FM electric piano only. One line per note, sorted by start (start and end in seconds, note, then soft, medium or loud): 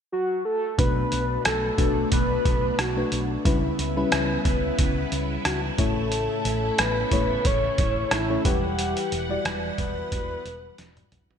0.78 1.75 B2 medium
0.78 1.45 A3 medium
0.78 1.45 D4 medium
0.78 1.45 F#4 medium
0.78 1.45 B4 medium
1.78 2.56 A3 medium
1.78 2.57 D4 medium
1.78 2.57 F#4 medium
1.78 2.57 B4 medium
2.97 3.30 A3 medium
2.97 3.30 D4 medium
2.97 3.30 F#4 medium
2.97 3.30 B4 medium
3.45 4.41 C#3 medium
3.45 3.78 G3 medium
3.45 3.78 C#4 medium
3.45 3.79 E4 medium
3.45 3.79 B4 medium
3.96 4.07 G3 medium
3.96 4.07 C#4 medium
3.96 4.07 E4 medium
3.96 4.07 B4 medium
4.11 5.01 G3 medium
4.11 5.01 C#4 medium
4.11 5.01 E4 medium
4.11 5.01 B4 medium
5.78 6.75 A2 medium
5.78 6.86 A3 medium
5.78 6.86 C#4 medium
5.78 6.86 E4 medium
5.78 6.86 C#5 medium
7.11 7.90 A3 medium
7.11 7.90 C#4 medium
7.11 7.90 E4 medium
7.11 7.90 C#5 medium
8.29 8.45 A3 medium
8.29 8.45 C#4 medium
8.29 8.44 E4 medium
8.29 8.45 C#5 medium
8.45 9.41 E3 medium
8.45 9.12 G3 medium
8.45 9.12 E4 medium
8.45 9.12 B4 medium
8.45 9.12 F#5 medium
9.29 9.40 G3 medium
9.29 9.40 E4 medium
9.29 9.40 F#4 medium
9.29 9.40 D5 medium
9.44 10.34 G3 medium
9.44 10.34 E4 medium
9.44 10.35 F#4 medium
9.44 10.35 B4 medium